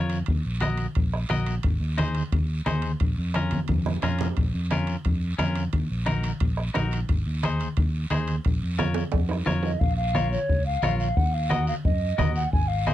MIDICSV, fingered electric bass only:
0, 0, Header, 1, 2, 480
1, 0, Start_track
1, 0, Key_signature, -5, "minor"
1, 0, Tempo, 340136
1, 398, Time_signature, 4, 2, 24, 8
1, 18258, End_track
2, 0, Start_track
2, 0, Title_t, "Fingered electric bass"
2, 0, Program_c, 0, 33
2, 0, Note_on_c, 0, 41, 82
2, 298, Note_off_c, 0, 41, 0
2, 399, Note_on_c, 0, 39, 86
2, 591, Note_off_c, 0, 39, 0
2, 633, Note_on_c, 0, 34, 73
2, 1213, Note_off_c, 0, 34, 0
2, 1366, Note_on_c, 0, 34, 84
2, 1748, Note_off_c, 0, 34, 0
2, 1834, Note_on_c, 0, 34, 82
2, 2222, Note_off_c, 0, 34, 0
2, 2322, Note_on_c, 0, 32, 84
2, 2514, Note_off_c, 0, 32, 0
2, 2543, Note_on_c, 0, 39, 78
2, 3128, Note_off_c, 0, 39, 0
2, 3281, Note_on_c, 0, 39, 86
2, 3667, Note_off_c, 0, 39, 0
2, 3755, Note_on_c, 0, 39, 85
2, 4144, Note_off_c, 0, 39, 0
2, 4242, Note_on_c, 0, 34, 82
2, 4435, Note_off_c, 0, 34, 0
2, 4489, Note_on_c, 0, 41, 67
2, 5064, Note_off_c, 0, 41, 0
2, 5209, Note_on_c, 0, 41, 79
2, 5593, Note_off_c, 0, 41, 0
2, 5693, Note_on_c, 0, 41, 78
2, 6075, Note_off_c, 0, 41, 0
2, 6174, Note_on_c, 0, 34, 85
2, 6363, Note_off_c, 0, 34, 0
2, 6409, Note_on_c, 0, 41, 67
2, 6985, Note_off_c, 0, 41, 0
2, 7134, Note_on_c, 0, 41, 84
2, 7516, Note_off_c, 0, 41, 0
2, 7610, Note_on_c, 0, 41, 75
2, 7993, Note_off_c, 0, 41, 0
2, 8087, Note_on_c, 0, 39, 84
2, 8280, Note_off_c, 0, 39, 0
2, 8328, Note_on_c, 0, 34, 70
2, 8904, Note_off_c, 0, 34, 0
2, 9045, Note_on_c, 0, 34, 81
2, 9431, Note_off_c, 0, 34, 0
2, 9530, Note_on_c, 0, 34, 82
2, 9914, Note_off_c, 0, 34, 0
2, 10005, Note_on_c, 0, 32, 92
2, 10199, Note_off_c, 0, 32, 0
2, 10249, Note_on_c, 0, 39, 73
2, 10825, Note_off_c, 0, 39, 0
2, 10975, Note_on_c, 0, 39, 91
2, 11357, Note_off_c, 0, 39, 0
2, 11446, Note_on_c, 0, 39, 77
2, 11831, Note_off_c, 0, 39, 0
2, 11939, Note_on_c, 0, 34, 77
2, 12127, Note_off_c, 0, 34, 0
2, 12170, Note_on_c, 0, 41, 69
2, 12746, Note_off_c, 0, 41, 0
2, 12896, Note_on_c, 0, 41, 75
2, 13277, Note_off_c, 0, 41, 0
2, 13373, Note_on_c, 0, 41, 81
2, 13755, Note_off_c, 0, 41, 0
2, 13847, Note_on_c, 0, 34, 98
2, 14614, Note_off_c, 0, 34, 0
2, 14807, Note_on_c, 0, 37, 92
2, 15190, Note_off_c, 0, 37, 0
2, 15287, Note_on_c, 0, 34, 90
2, 15670, Note_off_c, 0, 34, 0
2, 15765, Note_on_c, 0, 39, 95
2, 16531, Note_off_c, 0, 39, 0
2, 16726, Note_on_c, 0, 42, 92
2, 17108, Note_off_c, 0, 42, 0
2, 17206, Note_on_c, 0, 39, 83
2, 17588, Note_off_c, 0, 39, 0
2, 17685, Note_on_c, 0, 32, 94
2, 18258, Note_off_c, 0, 32, 0
2, 18258, End_track
0, 0, End_of_file